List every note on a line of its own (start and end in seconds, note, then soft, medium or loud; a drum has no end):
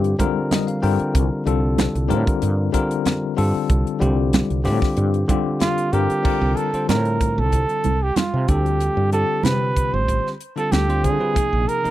0.00 0.14 G2 medium
0.00 0.15 D3 medium
0.00 0.15 G3 medium
0.00 0.15 C4 medium
0.00 0.16 F4 medium
0.00 0.16 G4 loud
0.04 closed hi-hat soft
0.19 0.79 D3 medium
0.19 0.79 G3 medium
0.19 0.79 C4 medium
0.19 0.80 F4 medium
0.19 0.80 A#4 medium
0.19 kick medium
0.19 closed hi-hat medium
0.19 muted conga soft
0.19 high conga medium
0.51 0.67 D#5 medium
0.51 snare loud
0.51 closed hi-hat medium
0.51 high conga medium
0.67 0.81 F5 medium
0.67 closed hi-hat soft
0.82 0.97 G2 medium
0.82 1.43 D3 medium
0.82 1.43 G3 medium
0.82 1.43 C4 medium
0.82 1.43 F4 medium
0.82 1.43 A#4 medium
0.82 1.12 G5 medium
0.82 open hi-hat medium
1.00 muted fretless electric bass stroke soft
1.00 closed hi-hat soft
1.15 1.28 C2 medium
1.15 kick medium
1.15 closed hi-hat medium
1.15 muted conga soft
1.45 1.86 C2 loud
1.45 2.06 D3 medium
1.45 2.06 G3 medium
1.45 2.07 C4 medium
1.45 2.07 F4 medium
1.45 2.07 A4 medium
1.45 closed hi-hat medium
1.78 snare loud
1.78 closed hi-hat medium
1.78 high conga medium
1.95 2.12 C2 medium
1.95 closed hi-hat soft
2.08 2.24 A2 medium
2.08 2.69 D3 medium
2.08 2.70 G3 medium
2.08 2.70 C4 medium
2.08 2.70 F4 medium
2.08 2.70 A#4 medium
2.08 closed hi-hat medium
2.08 muted conga soft
2.08 high conga medium
2.27 kick medium
2.27 closed hi-hat soft
2.42 2.68 G2 medium
2.42 closed hi-hat medium
2.42 muted conga soft
2.72 3.33 D3 medium
2.72 3.33 G3 medium
2.72 3.34 C4 medium
2.72 3.34 F4 medium
2.72 3.34 A#4 medium
2.72 kick medium
2.72 closed hi-hat medium
2.72 muted conga soft
2.91 closed hi-hat soft
3.06 snare loud
3.06 closed hi-hat medium
3.06 high conga medium
3.36 3.52 G2 medium
3.36 3.97 D3 medium
3.36 3.97 G3 medium
3.36 3.97 C4 medium
3.36 3.98 F4 medium
3.36 3.98 A4 loud
3.36 open hi-hat medium
3.55 muted fretless electric bass stroke soft
3.70 3.83 C2 medium
3.70 kick medium
3.70 closed hi-hat medium
3.70 muted conga soft
3.87 closed hi-hat soft
3.99 4.41 C2 loud
3.99 4.61 D3 medium
3.99 4.61 G3 medium
3.99 4.61 C4 medium
3.99 4.61 F4 medium
3.99 4.62 G4 medium
3.99 closed hi-hat medium
3.99 low conga medium
4.33 snare loud
4.33 closed hi-hat medium
4.33 high conga medium
4.33 low conga medium
4.50 4.67 C2 medium
4.50 closed hi-hat soft
4.64 4.79 A2 medium
4.64 5.25 D3 medium
4.64 5.25 G3 medium
4.64 5.25 C4 medium
4.64 5.25 F4 medium
4.64 5.26 G4 loud
4.64 snare soft
4.64 open hi-hat medium
4.82 kick medium
4.82 snare soft
4.97 5.23 G2 medium
4.97 closed hi-hat medium
4.97 muted conga soft
5.14 closed hi-hat soft
5.28 5.89 D3 medium
5.28 5.89 G3 medium
5.28 5.89 C4 medium
5.28 5.90 F4 medium
5.28 5.90 G4 medium
5.28 kick medium
5.28 closed hi-hat medium
5.28 muted conga soft
5.28 high conga medium
5.60 5.94 F4 medium
5.60 snare medium
5.60 closed hi-hat medium
5.60 high conga medium
5.78 closed hi-hat soft
5.92 6.07 G2 medium
5.92 6.22 D3 medium
5.92 6.22 G3 medium
5.92 6.22 C4 medium
5.92 6.23 F4 medium
5.92 6.58 G4 medium
5.92 6.24 A#4 medium
5.92 closed hi-hat soft
6.10 muted fretless electric bass stroke soft
6.10 closed hi-hat soft
6.23 6.70 D3 medium
6.23 6.70 G3 medium
6.23 6.70 C4 medium
6.23 6.70 F4 medium
6.23 6.71 A#4 medium
6.23 muted fretless electric bass stroke soft
6.23 kick loud
6.23 crash medium
6.23 muted conga soft
6.41 6.54 C2 medium
6.56 6.88 A4 medium
6.56 closed hi-hat soft
6.56 muted conga soft
6.73 7.93 D3 medium
6.73 7.93 G3 soft
6.73 7.93 C4 soft
6.73 7.94 F4 medium
6.73 7.94 C5 medium
6.73 muted fretless electric bass stroke soft
6.73 closed hi-hat soft
6.89 7.39 A2 medium
6.89 7.41 A#4 medium
6.89 snare medium
6.89 closed hi-hat medium
6.89 high conga medium
7.05 closed hi-hat soft
7.21 kick medium
7.21 closed hi-hat medium
7.38 7.64 C2 medium
7.38 8.04 A4 medium
7.52 kick medium
7.52 closed hi-hat medium
7.52 muted conga soft
7.69 closed hi-hat soft
7.84 8.11 C2 medium
7.84 closed hi-hat medium
7.84 high conga medium
8.03 8.18 G4 medium
8.16 8.50 F4 medium
8.16 muted fretless electric bass stroke soft
8.16 snare loud
8.16 closed hi-hat medium
8.16 high conga medium
8.34 8.46 C3 medium
8.48 8.88 D2 medium
8.48 9.09 D3 medium
8.48 9.09 G3 medium
8.48 9.09 C4 medium
8.48 9.09 F4 medium
8.48 9.12 G4 medium
8.48 9.09 A4 medium
8.48 kick medium
8.48 closed hi-hat medium
8.66 closed hi-hat soft
8.80 closed hi-hat medium
8.80 muted conga soft
8.97 9.23 G2 medium
9.12 10.33 D3 medium
9.12 10.33 G3 medium
9.12 10.33 C4 medium
9.12 10.33 F4 medium
9.12 10.34 G4 medium
9.12 9.46 A4 medium
9.12 closed hi-hat soft
9.12 muted conga soft
9.43 9.95 C3 medium
9.43 9.95 B4 medium
9.43 snare medium
9.43 closed hi-hat medium
9.43 high conga medium
9.76 kick medium
9.76 closed hi-hat medium
9.94 10.19 A1 medium
9.94 10.30 C5 medium
10.08 kick medium
10.08 closed hi-hat medium
10.08 muted conga soft
10.27 snare soft
10.41 closed hi-hat soft
10.56 10.86 D3 medium
10.56 10.87 G3 medium
10.56 10.87 C4 medium
10.56 10.87 F4 medium
10.56 10.73 A4 medium
10.56 10.87 A4 medium
10.56 closed hi-hat soft
10.72 11.05 D2 medium
10.72 11.06 G4 medium
10.72 snare medium
10.72 closed hi-hat medium
10.72 high conga medium
10.88 11.18 D3 medium
10.88 11.19 G3 medium
10.88 11.19 C4 medium
10.88 11.19 F4 medium
10.88 11.19 C5 medium
10.88 closed hi-hat soft
11.04 11.18 D3 medium
11.04 11.70 G#4 medium
11.04 kick medium
11.04 closed hi-hat soft
11.19 11.34 D3 medium
11.19 11.34 G3 medium
11.19 11.35 C4 medium
11.19 11.35 F4 medium
11.19 11.35 B4 medium
11.34 11.81 C3 medium
11.34 11.81 F3 medium
11.34 11.81 A#3 medium
11.34 11.82 D#4 medium
11.34 11.82 G#4 medium
11.34 muted fretless electric bass stroke soft
11.34 kick medium
11.34 closed hi-hat medium
11.34 muted conga soft
11.53 11.65 A#1 medium
11.68 11.90 A#4 medium
11.68 closed hi-hat medium
11.83 11.90 C3 medium
11.83 11.90 F3 soft
11.83 11.90 A#3 medium
11.83 11.90 D#4 medium
11.83 11.90 A#4 medium
11.83 muted fretless electric bass stroke soft
11.83 closed hi-hat soft